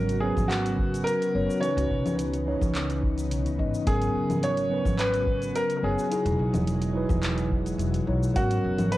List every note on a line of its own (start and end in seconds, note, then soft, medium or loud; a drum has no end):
0.00 0.30 G#1 medium
0.00 1.61 C#3 medium
0.00 0.19 F#3 medium
0.00 0.19 B3 medium
0.00 6.08 B3 medium
0.00 0.20 C#4 medium
0.00 1.59 F#4 medium
0.00 0.20 A#4 loud
0.00 0.25 A#4 medium
0.09 closed hi-hat soft
0.09 shaker soft
0.20 1.31 F#3 medium
0.20 1.32 B3 medium
0.20 1.32 C#4 medium
0.20 0.51 G#4 medium
0.25 1.33 B4 medium
0.37 1.01 G#1 medium
0.37 kick loud
0.37 low conga medium
0.37 shaker medium
0.48 1.07 F#4 medium
0.48 clap medium
0.48 closed hi-hat medium
0.48 shaker medium
0.66 closed hi-hat soft
0.66 shaker soft
0.79 kick loud
0.94 closed hi-hat soft
0.94 shaker medium
1.04 1.58 A#4 loud
1.04 closed hi-hat medium
1.04 shaker medium
1.22 closed hi-hat soft
1.22 shaker soft
1.34 1.45 F#1 medium
1.34 1.51 F#3 medium
1.34 1.51 B3 medium
1.34 1.51 C#4 medium
1.34 1.51 C#5 medium
1.50 shaker medium
1.61 6.08 C#3 medium
1.61 2.43 E3 medium
1.61 3.85 E3 medium
1.61 2.44 C#4 medium
1.61 2.44 D#4 medium
1.61 3.85 D#4 medium
1.61 2.14 C#5 loud
1.61 closed hi-hat medium
1.61 shaker soft
1.65 2.45 B4 loud
1.77 1.87 C#2 medium
1.77 closed hi-hat soft
1.77 shaker soft
1.91 2.04 B1 medium
1.91 kick medium
2.04 2.54 C#2 medium
2.04 closed hi-hat soft
2.04 low conga medium
2.04 shaker medium
2.19 closed hi-hat medium
2.19 shaker soft
2.34 closed hi-hat soft
2.34 shaker soft
2.45 3.55 E3 medium
2.45 3.55 C#4 medium
2.45 3.56 D#4 medium
2.45 3.57 C#5 medium
2.62 3.30 C#2 medium
2.62 kick medium
2.62 low conga medium
2.62 shaker medium
2.75 clap medium
2.75 closed hi-hat medium
2.75 shaker medium
2.90 closed hi-hat soft
2.90 shaker soft
3.03 kick loud
3.18 closed hi-hat soft
3.18 shaker medium
3.30 3.44 B1 medium
3.30 closed hi-hat medium
3.30 shaker medium
3.44 3.60 C#2 medium
3.44 closed hi-hat soft
3.44 shaker soft
3.58 3.70 G#1 medium
3.58 3.75 E3 medium
3.58 3.75 C#4 medium
3.58 3.75 D#4 medium
3.58 3.76 D#5 medium
3.58 kick medium
3.74 shaker medium
3.85 4.08 G#1 medium
3.85 4.67 F#3 medium
3.85 4.68 B3 medium
3.85 4.68 C#4 medium
3.85 6.09 F#4 medium
3.85 4.45 G#4 medium
3.85 4.69 A#4 loud
3.85 kick loud
3.85 closed hi-hat medium
3.85 shaker medium
4.02 closed hi-hat soft
4.02 shaker soft
4.15 4.29 F#1 medium
4.29 4.79 G#1 medium
4.29 closed hi-hat soft
4.29 low conga medium
4.29 shaker medium
4.43 5.01 C#5 medium
4.43 closed hi-hat medium
4.43 shaker soft
4.57 closed hi-hat soft
4.57 shaker soft
4.69 5.79 F#3 medium
4.69 5.80 B3 medium
4.69 5.80 C#4 medium
4.69 5.81 B4 medium
4.85 5.49 G#1 medium
4.85 kick loud
4.85 low conga medium
4.85 shaker medium
4.99 5.57 B4 loud
4.99 clap medium
4.99 closed hi-hat medium
4.99 shaker medium
5.14 closed hi-hat soft
5.14 shaker soft
5.27 kick loud
5.42 closed hi-hat soft
5.42 shaker medium
5.56 5.75 A#4 medium
5.56 closed hi-hat medium
5.56 shaker medium
5.70 closed hi-hat soft
5.70 shaker soft
5.77 5.84 A#4 medium
5.82 5.94 F#1 medium
5.82 5.99 F#3 medium
5.82 6.00 B3 medium
5.82 6.00 C#4 medium
5.82 7.48 G#4 medium
5.82 6.00 C#5 medium
5.99 shaker medium
6.10 8.34 E3 medium
6.10 6.92 F#3 medium
6.10 8.34 G#3 medium
6.10 6.92 D#4 medium
6.10 6.93 E4 medium
6.10 8.98 F#4 medium
6.10 6.93 G#4 loud
6.10 8.34 D#5 medium
6.10 closed hi-hat medium
6.10 shaker soft
6.25 6.36 E1 medium
6.25 closed hi-hat soft
6.25 shaker soft
6.39 6.55 B1 medium
6.53 7.03 E1 medium
6.53 closed hi-hat soft
6.53 low conga medium
6.53 shaker medium
6.67 closed hi-hat medium
6.67 shaker soft
6.82 closed hi-hat soft
6.82 shaker soft
6.93 8.03 F#3 medium
6.93 8.04 D#4 medium
6.93 8.05 E4 medium
6.93 8.05 B4 medium
7.09 7.74 E1 medium
7.09 kick loud
7.09 low conga medium
7.09 shaker medium
7.23 clap medium
7.23 closed hi-hat medium
7.23 shaker medium
7.38 closed hi-hat soft
7.38 shaker soft
7.51 kick medium
7.66 closed hi-hat soft
7.66 shaker medium
7.78 7.99 E1 medium
7.78 closed hi-hat medium
7.78 shaker medium
7.94 closed hi-hat soft
7.94 shaker soft
8.07 8.28 B1 medium
8.07 8.24 F#3 medium
8.07 8.24 D#4 medium
8.07 8.24 E4 medium
8.07 8.24 C#5 medium
8.23 shaker medium
8.34 8.56 G#1 medium
8.34 8.98 C#3 medium
8.34 8.98 F#3 medium
8.34 8.98 B3 medium
8.34 8.98 C#4 medium
8.34 8.94 F#4 medium
8.34 8.98 A#4 loud
8.34 kick loud
8.34 closed hi-hat medium
8.34 shaker medium
8.51 closed hi-hat soft
8.51 shaker soft
8.64 8.78 F#1 medium
8.78 8.98 G#1 medium
8.78 closed hi-hat soft
8.78 low conga medium
8.78 shaker medium
8.92 8.98 B4 loud
8.92 closed hi-hat medium
8.92 shaker medium